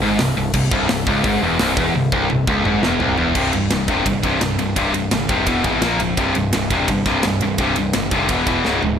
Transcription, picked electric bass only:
0.01 0.18 G#1 loud
0.20 0.36 C1 medium
0.37 0.53 C1 medium
0.54 0.70 C1 medium
0.71 0.88 C1 medium
0.89 1.05 C1 medium
1.07 1.23 C#1 medium
1.25 1.41 G#1 medium
1.41 1.58 E1 loud
1.60 1.76 C1 loud
1.77 1.93 E1 medium
1.95 2.11 C1 medium
2.12 2.29 C1 loud
2.30 2.46 C1 medium
2.48 2.64 C#1 loud
2.65 2.82 G#1 loud
2.83 2.99 E1 loud
3.01 3.17 C1 loud
3.18 3.34 E1 medium
3.35 3.52 C1 medium
3.53 3.69 C1 medium
3.71 3.87 C1 medium
3.88 4.04 E1 medium
4.07 4.23 G1 medium
4.24 4.40 C1 medium
4.41 4.57 C1 medium
4.58 4.75 C1 medium
4.77 4.93 C1 medium
4.94 5.10 C1 medium
5.12 5.28 G1 medium
5.29 5.47 F1 medium
5.47 5.63 E1 medium
5.65 5.81 G#1 medium
5.82 5.98 A#1 medium
6.00 6.16 C#1 medium
6.18 6.34 C1 medium
6.36 6.52 C1 medium
6.54 6.70 C1 medium
6.71 6.87 E1 medium
6.89 7.05 G1 loud
7.06 7.22 C1 medium
7.25 7.41 C1 loud
7.43 7.58 C1 medium
7.59 7.75 C1 medium
7.78 7.94 C1 medium
7.95 8.11 G1 medium
8.11 8.28 F1 medium
8.29 8.45 E1 medium
8.47 8.63 E1 medium
8.65 8.81 C#1 loud
8.83 8.99 C#1 medium

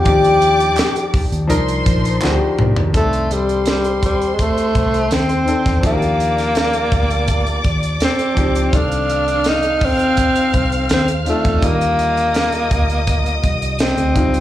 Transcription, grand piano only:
0.04 1.38 F3 medium
0.04 1.38 D4 medium
0.04 1.39 D#4 medium
0.04 1.39 G4 medium
1.47 2.15 F3 medium
1.47 2.16 D4 medium
1.47 2.16 D#4 medium
1.47 2.17 A#4 loud
2.21 2.88 F3 medium
2.21 2.88 D4 medium
2.21 2.89 D#4 medium
2.21 2.29 F#4 medium
2.30 2.93 G4 medium
2.92 4.26 D#3 medium
2.92 4.27 C4 medium
2.92 4.27 D4 medium
2.92 4.27 A4 medium
5.45 5.80 D#3 medium
5.45 5.80 C4 medium
5.45 5.81 D4 medium
5.45 5.81 A4 medium
5.81 7.15 F3 medium
5.81 7.16 D4 medium
5.81 7.16 D#4 medium
5.81 5.90 F#4 medium
5.91 7.20 G4 medium
8.35 8.69 F3 medium
8.35 8.70 D4 medium
8.35 8.70 D#4 medium
8.35 8.71 G4 medium
8.72 10.06 D#3 medium
8.72 10.06 C4 medium
8.72 10.07 A4 medium
8.72 10.07 D5 medium
11.24 11.59 D#3 medium
11.24 11.59 C4 medium
11.24 11.60 D4 medium
11.24 11.60 F4 medium
11.60 12.96 D3 medium
11.60 12.95 D#3 medium
11.60 12.95 G3 medium
11.60 12.96 F4 medium
14.13 14.40 D#3 medium
14.13 14.40 G3 medium
14.13 14.40 D#4 medium
14.13 14.40 F4 medium

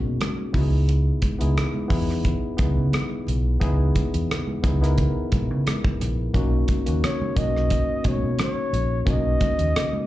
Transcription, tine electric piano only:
0.00 0.57 A#3 medium
0.00 0.57 C#4 medium
0.00 0.53 D#4 medium
0.00 0.54 F#4 medium
0.00 0.57 G#4 medium
0.53 1.22 B3 medium
0.53 1.22 D#4 medium
0.53 1.22 E4 medium
0.53 0.62 F#4 medium
0.61 1.26 G#4 medium
1.39 1.71 B3 medium
1.39 1.71 D#4 medium
1.39 1.71 E4 medium
1.39 1.72 G#4 medium
1.88 2.31 B3 medium
1.88 2.31 D#4 medium
1.88 2.32 E4 medium
1.88 2.32 G#4 medium
2.57 3.20 B3 medium
2.57 3.21 D#4 medium
2.57 3.21 E4 medium
2.57 3.21 G#4 medium
3.60 4.23 B3 medium
3.60 4.23 D#4 medium
3.60 4.24 E4 medium
3.60 4.24 G#4 loud
4.62 4.74 B3 medium
4.62 4.75 D#4 medium
4.62 4.75 E4 medium
4.62 4.75 G#4 medium
4.81 5.62 B3 medium
4.81 5.63 D#4 medium
4.81 5.63 E4 medium
4.81 5.63 A#4 medium
6.34 6.65 A#3 medium
6.34 6.65 C#4 medium
6.34 6.66 D#4 medium
6.34 6.66 F#4 loud
6.86 7.17 A#3 medium
6.86 7.17 C#4 medium
6.86 7.18 D#4 medium
6.86 7.18 F#4 medium
7.36 7.78 A#3 medium
7.36 7.78 C#4 medium
7.36 7.78 D#4 medium
7.36 7.79 F#4 medium
8.04 8.66 A#3 medium
8.04 8.66 C#4 medium
8.04 8.67 D#4 medium
8.04 8.67 F#4 medium
9.06 9.68 A#3 medium
9.06 9.68 C#4 medium
9.06 9.69 D#4 medium
9.06 9.69 F#4 medium

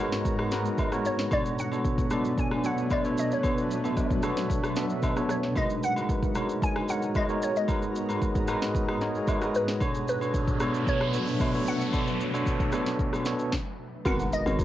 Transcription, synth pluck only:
1.06 1.30 C#5 medium
1.33 1.60 D5 medium
1.60 2.08 F#5 loud
2.39 2.66 G#5 loud
2.66 2.92 F#5 medium
2.93 3.04 D5 medium
3.19 3.32 D#5 medium
3.33 4.34 C#5 medium
5.31 5.55 C#5 medium
5.57 5.84 D#5 loud
5.84 6.33 F#5 loud
6.64 6.90 G#5 loud
6.90 7.17 F#5 medium
7.17 7.41 D#5 medium
7.43 7.56 C#5 medium
7.57 8.59 D#5 medium
9.56 10.08 B4 medium
10.09 10.84 B4 medium
10.89 11.70 C#5 loud
11.68 12.70 F#5 medium
14.07 14.34 F#5 loud
14.33 14.65 D#5 loud

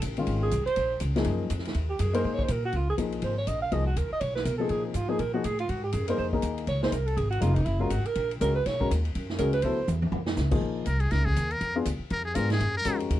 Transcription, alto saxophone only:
0.43 0.65 G#4 medium
0.65 0.98 C5 loud
1.89 2.02 G4 medium
2.00 2.14 G#4 medium
2.15 2.26 A#4 medium
2.25 2.35 C5 medium
2.34 2.45 C#5 loud
2.43 2.53 C5 medium
2.51 2.64 A#4 medium
2.65 2.77 F#4 medium
2.76 2.89 F4 medium
2.89 2.95 G#4 medium
3.24 3.37 C5 medium
3.38 3.49 C#5 medium
3.47 3.61 D#5 medium
3.62 3.74 F5 loud
3.72 3.86 D#5 medium
3.86 3.98 F#4 medium
3.97 4.11 A#4 medium
4.12 4.22 D#5 loud
4.20 4.34 C#5 medium
4.35 4.46 B4 medium
4.44 4.57 A#4 medium
4.58 4.72 A4 medium
4.71 4.85 G#4 medium
4.86 4.97 C4 soft
4.95 5.10 F4 medium
5.09 5.21 G#4 medium
5.20 5.33 A#4 medium
5.33 5.46 F#4 medium
5.44 5.59 G#4 loud
5.60 5.71 F4 medium
5.69 5.83 F#4 medium
5.83 5.94 G4 medium
5.93 6.07 G#4 medium
6.08 6.17 A#4 medium
6.18 6.27 C5 medium
6.68 6.82 C#5 medium
6.83 6.94 C5 medium
6.93 7.08 A#4 medium
7.06 7.18 A4 loud
7.17 7.30 G#4 medium
7.30 7.43 F#4 medium
7.42 7.56 F4 medium
7.55 7.67 D#4 medium
7.65 7.82 E4 medium
7.80 7.92 F4 medium
7.91 8.07 F#4 medium
8.06 8.30 A#4 loud
8.41 8.54 A#4 medium
8.55 8.67 B4 loud
8.66 8.90 C#5 loud
9.39 9.53 A#4 medium
9.53 9.64 B4 loud
9.63 9.88 C5 medium

